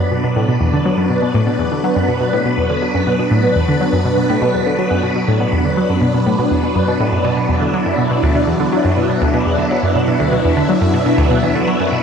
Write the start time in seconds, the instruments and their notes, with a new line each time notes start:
Already playing: string machine F#3 B3 D4 B4
0.12 synth arpeggio sound B2
0.24 synth arpeggio sound B2
0.36 synth arpeggio sound A2
0.48 synth arpeggio sound B2
0.61 synth arpeggio sound E2
0.73 synth arpeggio sound D3
0.85 synth arpeggio sound F#3
0.98 synth arpeggio sound F#2
1.10 synth arpeggio sound B2
1.22 synth arpeggio sound B2
1.35 synth arpeggio sound A2
1.47 synth arpeggio sound B2
1.59 synth arpeggio sound E2
1.72 synth arpeggio sound D3
1.84 synth arpeggio sound F#3
1.96 synth arpeggio sound F#2
2.09 synth arpeggio sound B2
2.21 synth arpeggio sound B2
2.33 synth arpeggio sound A2
2.45 synth arpeggio sound B2
2.58 synth arpeggio sound E2
2.70 synth arpeggio sound D3
2.82 synth arpeggio sound F#3
2.95 synth arpeggio sound F#2
3.07 synth arpeggio sound B2
3.19 synth arpeggio sound B2
3.31 synth arpeggio sound A2
3.44 synth arpeggio sound B2
3.56 synth arpeggio sound E2
3.68 synth arpeggio sound D3
3.81 synth arpeggio sound F#3
3.93 synth arpeggio sound F#2
4.05 synth arpeggio sound B2
4.17 synth arpeggio sound B2
4.30 synth arpeggio sound A2
4.42 synth arpeggio sound B2
4.54 synth arpeggio sound E2
4.66 synth arpeggio sound D3
4.79 synth arpeggio sound F#3
4.91 synth arpeggio sound F#2
5.03 synth arpeggio sound B2
5.16 synth arpeggio sound B2
5.28 synth arpeggio sound A2
5.40 synth arpeggio sound B2
5.53 synth arpeggio sound E2
5.65 synth arpeggio sound D3
5.77 synth arpeggio sound F#3
5.90 synth arpeggio sound F#2
6.02 synth arpeggio sound B2
6.14 synth arpeggio sound B2
6.26 synth arpeggio sound A2
6.39 synth arpeggio sound B2
6.51 synth arpeggio sound E2
6.63 synth arpeggio sound B2
6.76 synth arpeggio sound F#2
6.88 synth arpeggio sound B2
7.00 synth arpeggio sound A2
7.12 synth arpeggio sound F#2
7.25 synth arpeggio sound B2
7.37 synth arpeggio sound B2, string machine E4
7.49 synth arpeggio sound E2
7.62 synth arpeggio sound D3
7.74 synth arpeggio sound F#3
7.86 synth arpeggio sound F#2
7.98 synth arpeggio sound B2
8.11 synth arpeggio sound B2
8.23 synth arpeggio sound D2
8.35 synth arpeggio sound B2
8.47 synth arpeggio sound E2
8.60 synth arpeggio sound D3
8.72 synth arpeggio sound F#3
8.85 synth arpeggio sound F#2
8.97 synth arpeggio sound B2
9.09 synth arpeggio sound B2
9.22 synth arpeggio sound D2
9.34 synth arpeggio sound B2
9.46 synth arpeggio sound E2
9.58 synth arpeggio sound D3
9.71 synth arpeggio sound F#3
9.83 synth arpeggio sound F#2
9.95 synth arpeggio sound B2
10.08 synth arpeggio sound B2
10.20 synth arpeggio sound D2
10.32 synth arpeggio sound B2
10.45 synth arpeggio sound E2
10.57 synth arpeggio sound D3
10.69 synth arpeggio sound F#3
10.81 synth arpeggio sound F#2
10.94 synth arpeggio sound B2
11.06 synth arpeggio sound B2
11.18 synth arpeggio sound D2
11.31 synth arpeggio sound B2
11.43 synth arpeggio sound E2
11.55 synth arpeggio sound D3
11.68 synth arpeggio sound F#3
11.80 synth arpeggio sound F#2
11.92 synth arpeggio sound B2